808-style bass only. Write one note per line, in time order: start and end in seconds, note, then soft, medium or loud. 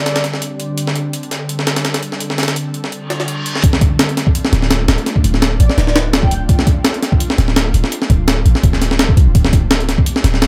4.53 4.87 D1 loud
4.88 4.97 D1 medium
5.24 5.59 D1 loud
5.60 5.69 A1 medium
5.78 6.48 D1 medium
7.38 7.73 D1 loud
7.74 7.83 D1 medium
8.10 8.44 D1 loud
8.46 8.54 A1 medium
8.63 9.16 D1 medium
9.17 9.28 C2 medium
9.27 9.97 D1 loud
10.24 10.47 D1 loud